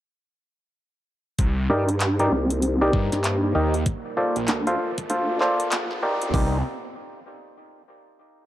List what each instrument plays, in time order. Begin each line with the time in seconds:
1.39 detuned saw bass C2, analog synth pad A#3 D#4 G4 C5, kick, closed hi-hat, riser
1.70 wobble bass G2, clav D#4 G4 A#4 D5
1.89 closed hi-hat
2.00 clap, closed hi-hat
2.19 clav D#4 G4 A#4 D5, closed hi-hat
2.31 wobble bass C2
2.50 closed hi-hat
2.62 closed hi-hat
2.81 clav D#4 G4 A#4 D5
2.93 detuned saw bass G2, kick
3.12 wobble bass G2, snare, closed hi-hat
3.24 clap, closed hi-hat
3.55 detuned saw bass D#2, clav D#4 G4 A#4 D#5
3.74 closed hi-hat
3.86 analog synth pad F4 D5 A5, kick, closed hi-hat
4.17 clav F4 A4 C5 D5
4.36 detuned saw bass A#1, closed hi-hat
4.48 wobble bass D2, clap, closed hi-hat
4.67 clav F4 A4 C5 F5, closed hi-hat
4.98 kick, closed hi-hat
5.10 wobble bass D2, clav F4 A4 C5 F5, closed hi-hat
5.41 clav F4 A4 C5 D5, clap
5.60 closed hi-hat
5.72 wobble bass A#1, clap, closed hi-hat
5.91 snare
6.03 clav D#4 G4 A#4 D5
6.22 wobble bass F2, closed hi-hat
6.34 detuned saw bass C2, clav D#4 G4 A#4 D5, kick, open hi-hat